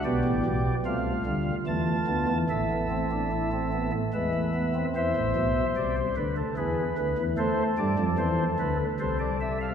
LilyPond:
<<
  \new Staff \with { instrumentName = "Pipe organ" } { \time 3/4 \key a \minor \tempo 4 = 74 << { d''4 f''4 a''4 | e''2 e''4 | e''4 d''16 c''16 b'16 a'16 gis'8 b'8 | c''8 d''8 c''8 b'8 c''16 d''16 e''16 f''16 | } \\ { g'4 f'2 | a'2 b'4 | c''2 b'4 | a'2 a'4 | } >> }
  \new Staff \with { instrumentName = "Pipe organ" } { \clef bass \time 3/4 \key a \minor << { b4 a8 g8 a8 b8 | a16 b16 c'16 d'16 e'16 c'16 b16 a16 gis16 a16 b16 c'16 | r2. | r2. | } \\ { <b,, b,>16 <a,, a,>16 <b,, b,>8 <c, c>8 <d, d>8 <e, e>8 <d, d>16 <e, e>16 | <a,, a,>2 <e, e>4 | <e, e>16 <a,, a,>16 <b,, b,>8 <c, c>8 <d, d>8 <e, e>8 <d, d>16 <e, e>16 | a8 <g, g>16 <f, f>16 <e, e>8 <d, d>8 <c, c>4 | } >> }
>>